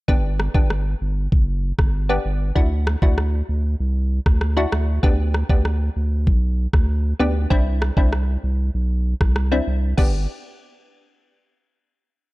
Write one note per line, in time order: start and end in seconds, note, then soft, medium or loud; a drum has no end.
0.08 0.49 G1 loud
0.08 0.51 B3 medium
0.08 0.51 D4 medium
0.08 0.51 G4 loud
0.08 kick loud
0.40 cross-stick medium
0.54 0.95 G1 loud
0.54 0.71 B3 medium
0.54 0.72 D4 medium
0.54 0.72 G4 medium
0.54 kick loud
0.70 cross-stick medium
1.01 1.28 G1 medium
1.32 1.72 F#1 loud
1.32 kick medium
1.79 2.19 G1 medium
1.79 kick medium
1.79 cross-stick medium
2.09 2.26 B3 medium
2.09 2.26 D4 medium
2.09 2.26 G4 medium
2.25 2.52 G1 medium
2.56 2.96 D2 loud
2.56 2.98 D4 medium
2.56 2.98 E4 medium
2.56 2.99 F#4 loud
2.56 kick loud
2.87 cross-stick loud
3.02 3.42 D2 loud
3.02 3.19 D4 medium
3.02 3.19 E4 medium
3.02 3.19 F#4 medium
3.02 kick loud
3.18 cross-stick medium
3.49 3.75 D2 medium
3.80 4.20 C2 medium
4.26 4.66 D2 medium
4.26 kick medium
4.26 cross-stick medium
4.41 cross-stick medium
4.57 4.74 D4 medium
4.57 4.74 E4 medium
4.57 4.74 F#4 medium
4.72 4.99 D2 medium
4.72 cross-stick loud
5.03 5.43 D2 loud
5.03 5.46 B3 medium
5.03 5.46 D4 medium
5.03 5.46 G4 loud
5.03 kick loud
5.34 cross-stick medium
5.49 5.90 D2 medium
5.49 5.66 B3 medium
5.49 5.66 D4 medium
5.49 5.67 G4 medium
5.49 kick loud
5.65 cross-stick medium
5.96 6.29 D2 medium
6.27 6.67 B1 medium
6.27 kick medium
6.73 7.14 D2 medium
6.73 kick medium
6.73 cross-stick medium
7.19 7.46 D2 medium
7.19 7.48 B3 medium
7.19 7.48 D4 medium
7.19 7.48 G4 medium
7.50 7.91 C2 loud
7.50 7.93 C4 loud
7.50 7.93 D4 medium
7.50 7.94 E4 loud
7.50 kick loud
7.82 cross-stick loud
7.97 8.37 C2 medium
7.97 8.14 C4 medium
7.97 8.14 D4 medium
7.97 8.14 E4 medium
7.97 kick loud
8.13 cross-stick medium
8.43 8.70 C2 medium
8.74 9.14 B1 medium
9.21 9.61 C2 medium
9.21 kick medium
9.21 cross-stick medium
9.36 cross-stick medium
9.52 9.68 C4 medium
9.52 9.68 D4 medium
9.52 9.69 E4 medium
9.67 9.94 C2 loud
9.98 10.27 G1 loud
9.98 10.21 B3 medium
9.98 10.21 D4 medium
9.98 10.21 G4 medium
9.98 kick loud
9.98 crash medium